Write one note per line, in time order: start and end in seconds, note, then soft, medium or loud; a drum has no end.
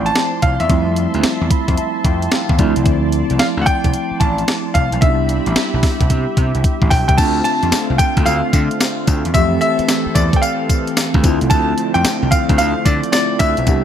0.00 0.10 A1 medium
0.00 0.65 F3 medium
0.00 4.98 F3 medium
0.00 0.66 A3 medium
0.00 0.66 C4 medium
0.00 0.67 E4 medium
0.00 0.67 D5 medium
0.00 4.98 A5 medium
0.00 7.14 C6 medium
0.06 0.43 A5 loud
0.06 closed hi-hat soft
0.15 snare loud
0.15 closed hi-hat medium
0.42 0.57 C2 loud
0.42 0.61 F5 medium
0.42 kick loud
0.42 closed hi-hat medium
0.60 0.68 E2 medium
0.60 1.10 E5 medium
0.60 closed hi-hat medium
0.69 1.06 F2 loud
0.69 2.55 G3 medium
0.69 2.55 A3 medium
0.69 2.56 C4 medium
0.69 2.56 E4 medium
0.69 2.57 E5 medium
0.69 kick loud
0.69 closed hi-hat medium
0.96 closed hi-hat medium
1.14 1.22 D2 medium
1.14 closed hi-hat soft
1.23 muted slap bass stroke medium
1.23 snare loud
1.23 closed hi-hat medium
1.41 1.49 E2 medium
1.51 1.76 B5 medium
1.51 kick loud
1.51 closed hi-hat medium
1.68 1.76 F2 loud
1.68 kick medium
1.68 closed hi-hat soft
1.77 2.03 A5 medium
1.77 closed hi-hat medium
2.05 2.27 F2 medium
2.05 2.30 G5 medium
2.05 kick medium
2.05 closed hi-hat medium
2.22 closed hi-hat medium
2.31 2.57 F5 medium
2.31 snare loud
2.31 closed hi-hat medium
2.49 2.57 E2 medium
2.49 kick medium
2.58 2.73 D2 loud
2.58 4.71 F3 medium
2.58 4.71 A3 medium
2.58 4.71 C4 medium
2.58 4.72 E4 loud
2.58 5.00 D5 medium
2.58 2.84 D5 medium
2.58 kick medium
2.58 closed hi-hat medium
2.76 2.86 C2 medium
2.76 closed hi-hat medium
2.86 3.22 D2 loud
2.86 kick loud
2.86 closed hi-hat medium
3.12 closed hi-hat medium
3.30 3.38 C2 medium
3.30 closed hi-hat soft
3.39 3.44 F5 medium
3.39 snare loud
3.39 closed hi-hat medium
3.57 3.65 D2 medium
3.61 3.67 F#5 medium
3.66 4.17 G5 loud
3.66 kick medium
3.66 closed hi-hat medium
3.84 3.92 C2 medium
3.84 kick medium
3.84 closed hi-hat medium
3.94 closed hi-hat medium
4.11 muted slap bass stroke soft
4.20 4.43 A1 loud
4.20 4.76 A5 loud
4.20 kick medium
4.20 closed hi-hat medium
4.38 closed hi-hat medium
4.48 snare loud
4.48 closed hi-hat medium
4.74 4.89 C2 medium
4.74 5.02 F5 loud
4.74 kick loud
4.74 closed hi-hat medium
4.92 5.00 B1 medium
4.92 closed hi-hat medium
5.01 5.38 C2 loud
5.01 7.14 G3 medium
5.01 7.14 B3 medium
5.01 7.15 D4 medium
5.01 5.11 D#4 medium
5.01 7.16 G4 medium
5.01 6.60 E5 medium
5.01 7.16 E5 medium
5.01 7.16 B5 medium
5.01 kick loud
5.01 closed hi-hat medium
5.10 7.18 E4 medium
5.29 closed hi-hat medium
5.46 5.54 A1 medium
5.46 closed hi-hat soft
5.56 muted slap bass stroke soft
5.56 snare loud
5.56 closed hi-hat medium
5.74 5.81 B1 medium
5.83 kick loud
5.83 snare medium
5.83 open hi-hat medium
6.01 6.08 C2 medium
6.01 kick medium
6.01 closed hi-hat medium
6.10 6.24 C3 loud
6.10 kick medium
6.10 closed hi-hat medium
6.37 6.51 C3 medium
6.37 kick medium
6.37 closed hi-hat medium
6.55 6.62 C2 medium
6.55 closed hi-hat soft
6.64 kick medium
6.64 closed hi-hat medium
6.82 6.89 A1 medium
6.82 kick medium
6.90 7.05 B1 loud
6.90 7.07 G5 loud
6.90 kick loud
6.90 open hi-hat medium
7.08 7.16 C2 loud
7.08 7.18 G5 medium
7.08 kick medium
7.08 closed hi-hat medium
7.18 7.40 D2 loud
7.18 9.32 D3 medium
7.18 9.30 A3 medium
7.18 9.32 A3 medium
7.18 9.30 C4 medium
7.18 11.20 C4 medium
7.18 9.31 D4 medium
7.18 9.32 F4 medium
7.18 9.31 F4 medium
7.18 7.43 A5 loud
7.18 kick loud
7.18 closed hi-hat medium
7.18 crash medium
7.18 tambourine medium
7.44 7.95 A5 loud
7.44 closed hi-hat medium
7.63 7.71 F2 medium
7.63 closed hi-hat soft
7.72 muted slap bass stroke medium
7.72 snare loud
7.72 closed hi-hat medium
7.72 tambourine loud
7.90 7.98 C2 medium
7.98 8.27 G5 loud
7.98 kick loud
7.98 closed hi-hat medium
7.98 tambourine medium
8.17 8.25 D2 medium
8.17 kick medium
8.17 closed hi-hat medium
8.26 8.41 D2 loud
8.26 9.37 F5 loud
8.26 closed hi-hat medium
8.26 tambourine medium
8.53 8.68 D3 medium
8.53 kick medium
8.53 closed hi-hat medium
8.53 tambourine medium
8.71 closed hi-hat medium
8.80 snare loud
8.80 closed hi-hat medium
8.80 tambourine loud
9.07 9.22 D2 loud
9.07 kick loud
9.07 closed hi-hat medium
9.07 tambourine medium
9.25 9.33 E2 medium
9.25 closed hi-hat medium
9.34 9.56 F2 loud
9.34 11.22 E3 medium
9.34 11.20 E3 medium
9.34 11.20 A3 medium
9.34 11.20 C4 medium
9.34 11.21 G4 medium
9.34 11.22 A4 medium
9.34 9.59 E5 loud
9.34 kick loud
9.34 closed hi-hat medium
9.34 tambourine medium
9.61 10.17 E5 loud
9.61 closed hi-hat medium
9.79 muted slap bass stroke soft
9.79 closed hi-hat soft
9.89 snare loud
9.89 closed hi-hat medium
9.89 tambourine loud
10.06 muted slap bass stroke medium
10.15 10.30 E2 loud
10.15 10.36 D5 medium
10.15 kick loud
10.15 closed hi-hat medium
10.15 tambourine medium
10.33 10.42 G5 medium
10.33 kick medium
10.33 closed hi-hat medium
10.42 11.19 F5 medium
10.42 closed hi-hat medium
10.42 tambourine medium
10.70 kick medium
10.70 closed hi-hat medium
10.70 tambourine medium
10.87 closed hi-hat medium
10.97 snare loud
10.97 closed hi-hat medium
10.97 tambourine loud
11.14 11.22 D2 medium
11.14 kick loud
11.23 11.38 D2 loud
11.23 13.65 D3 medium
11.23 13.65 F3 medium
11.23 13.09 A3 medium
11.23 13.65 A3 medium
11.23 13.09 C4 medium
11.23 13.65 C4 medium
11.23 13.10 E4 medium
11.23 13.10 F4 loud
11.23 kick loud
11.23 closed hi-hat medium
11.23 tambourine medium
11.41 11.49 C2 loud
11.41 closed hi-hat medium
11.50 11.73 D2 loud
11.50 11.96 A5 loud
11.50 kick loud
11.50 closed hi-hat medium
11.50 tambourine medium
11.78 closed hi-hat medium
11.94 12.03 F2 medium
11.94 12.32 G5 loud
11.94 closed hi-hat soft
12.05 muted slap bass stroke soft
12.05 snare loud
12.05 closed hi-hat medium
12.05 tambourine loud
12.22 12.30 C2 loud
12.31 12.57 F5 medium
12.31 kick loud
12.31 closed hi-hat medium
12.31 tambourine medium
12.49 12.57 D2 loud
12.49 kick medium
12.49 closed hi-hat medium
12.58 12.73 D2 loud
12.58 12.86 F5 loud
12.58 closed hi-hat medium
12.58 tambourine medium
12.85 13.00 D3 loud
12.85 13.11 D5 medium
12.85 kick medium
12.85 closed hi-hat medium
12.85 tambourine medium
13.03 closed hi-hat medium
13.12 13.67 A3 medium
13.12 13.67 C4 medium
13.12 13.67 E4 soft
13.12 13.68 F4 medium
13.12 13.40 D5 loud
13.12 snare loud
13.12 closed hi-hat medium
13.12 tambourine medium
13.39 13.54 D2 loud
13.39 13.84 E5 loud
13.39 kick loud
13.39 closed hi-hat medium
13.39 tambourine medium
13.57 13.65 B1 medium
13.57 closed hi-hat medium
13.67 13.84 C2 loud
13.67 13.84 C3 medium
13.67 13.84 G3 medium
13.67 13.84 B3 medium
13.67 13.84 D4 medium
13.67 13.84 E4 medium
13.67 13.84 G4 medium
13.67 kick loud
13.67 closed hi-hat medium
13.67 tambourine medium